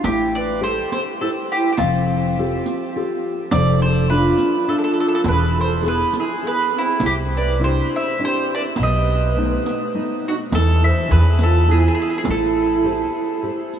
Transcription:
0.03 A1 A3 E4 G4, riq
0.35 B4 D5
0.61 G4 A4 C5
0.65 A4
0.92 A4 C5, riq
1.20 E4 G4 A4 C5
1.52 G4
1.56 E4
1.72 E4 G4
1.77 F1 F3 C4 F4, riq
2.38 F4 G4 A4
2.66 riq
2.96 F4 G4 A4
3.51 F1 F3 D5, riq
3.57 A4
3.82 C5
3.88 A4
4.09 D4 F4 B4 E5
4.15 F4
4.38 riq
4.68 D4 F4 A4 E5
4.78 A4
4.84 A4
4.93 A4
5.00 A4
5.08 A4
5.15 A4
5.24 E1 E3, riq
5.28 G#4 B4
5.59 A4 C5
5.81 B3 E4 G#4, riq
5.87 G#4 B4
6.13 riq
6.18 E4 G#4
6.43 B3 E4 G#4
6.47 B4
6.75 C4 E4
7.00 C2 C3 E4, riq
7.06 G4
7.36 B4 D5
7.59 C4 D4 E4 G4
7.64 C5
7.93 C5 E5
8.19 C4 D4 E4
8.24 G4 C5
8.55 B4 D5
8.76 B1 B2, riq
8.82 B4 D#5
9.37 A3 B3 D#4
9.66 riq
9.94 A3 B3 D#4
10.28 D#4 F#4
10.51 E2 E3 E4 A4, riq
10.84 C5 E5
11.09 E2 E3 G#4 B4
11.39 riq
11.43 F4 A4
11.67 B3 E4 G#4
11.80 G#4
11.88 G#4
11.95 G#4
12.02 G#4
12.10 G#4
12.18 G#4
12.23 A1 A3 E4, riq
12.30 A4
12.84 G4 A4 C5
13.43 G4 A4 C5
13.74 riq

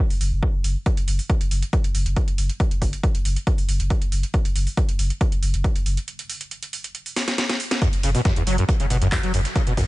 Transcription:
0.10 F#1, open hi-hat
0.21 F#1, open hi-hat
0.32 F#1
0.43 kick
0.54 F#1
0.64 F#1, open hi-hat
0.86 kick, closed hi-hat
0.97 F#1, closed hi-hat
1.08 F#1, open hi-hat
1.19 open hi-hat
1.30 kick, closed hi-hat
1.41 F#1, closed hi-hat
1.51 F#1, open hi-hat
1.62 closed hi-hat
1.73 kick, closed hi-hat
1.84 F#1, closed hi-hat
1.95 F#1, open hi-hat
2.06 F#1, closed hi-hat
2.16 kick, closed hi-hat
2.28 F#1, closed hi-hat
2.38 F#1, open hi-hat
2.49 closed hi-hat
2.60 kick, closed hi-hat
2.71 F#1, closed hi-hat
2.82 F#1, kick, open hi-hat
2.93 closed hi-hat
3.03 kick, closed hi-hat
3.15 F#1, closed hi-hat
3.25 F#1, open hi-hat
3.36 closed hi-hat
3.47 kick, closed hi-hat
3.58 F#1, open hi-hat
3.69 F#1, open hi-hat
3.80 F#1, closed hi-hat
3.90 kick, closed hi-hat
4.02 F#1, closed hi-hat
4.12 F#1, open hi-hat
4.23 closed hi-hat
4.34 kick, closed hi-hat
4.45 F#1, closed hi-hat
4.56 F#1, open hi-hat
4.67 open hi-hat
4.77 kick, closed hi-hat
4.89 F#1, closed hi-hat
4.99 F#1, open hi-hat
5.10 closed hi-hat
5.21 kick, closed hi-hat
5.32 F#1, closed hi-hat
5.43 F#1, open hi-hat
5.54 F#1, closed hi-hat
5.64 kick, closed hi-hat
5.76 F#1, closed hi-hat
5.86 F#1, open hi-hat
5.97 closed hi-hat
6.08 closed hi-hat
6.19 closed hi-hat
6.30 open hi-hat
6.41 closed hi-hat
6.51 closed hi-hat
6.63 closed hi-hat
6.73 open hi-hat
6.84 closed hi-hat
6.95 closed hi-hat
7.06 open hi-hat
7.16 snare, open hi-hat
7.28 snare, closed hi-hat
7.38 snare, closed hi-hat
7.49 snare, closed hi-hat
7.60 open hi-hat
7.71 snare, closed hi-hat
7.82 F#2, kick, closed hi-hat
7.93 F#1, closed hi-hat
8.03 F#1 C#3, closed hi-hat, open hi-hat
8.15 B2, open hi-hat
8.25 F#2, kick, snare, closed hi-hat
8.36 F#1 E2, closed hi-hat
8.47 F#1 F#3, closed hi-hat, open hi-hat
8.58 F#2, closed hi-hat
8.69 kick, closed hi-hat
8.80 F#1 C#3, closed hi-hat
8.90 F#1 B2, closed hi-hat, open hi-hat
9.02 F#1 F#2, closed hi-hat
9.12 E2, kick, snare, clap, closed hi-hat
9.23 F#1 F#3, snare, closed hi-hat
9.34 F#1 F#2, closed hi-hat, open hi-hat
9.45 snare, closed hi-hat
9.56 C#3, kick, closed hi-hat
9.67 F#1 B2, closed hi-hat
9.77 F#1 F#2, kick, open hi-hat

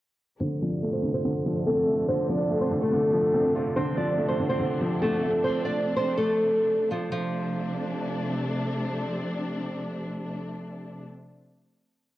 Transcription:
0.40 C3 D3 F3 A3 C4 D4 C5
0.62 F3 D4 D5
0.82 A3
0.93 C4 C5
1.03 D3
1.14 C4 C5
1.25 D3
1.45 F3
1.66 A3 C4 A4
1.87 A3
2.08 D3 C4 C5
2.29 F3 D4 D5
2.49 A3
2.61 C4 C5
2.71 D3
2.82 A3 A4
2.92 D3
3.13 F3
3.33 C4
3.55 F3 A3 F4
3.76 D3 A3 C4 D4 C5
3.97 F3 D4 D5
4.18 A3
4.29 C4 C5
4.40 D3
4.50 C4 C5
4.60 D3
4.81 F3
5.02 A3 C4 A4
5.22 A3
5.44 C4 C5
5.65 D4 D5
5.96 C4 C5
6.17 A3 A4
6.91 F3 F4
7.12 C3 F3 A3 D4

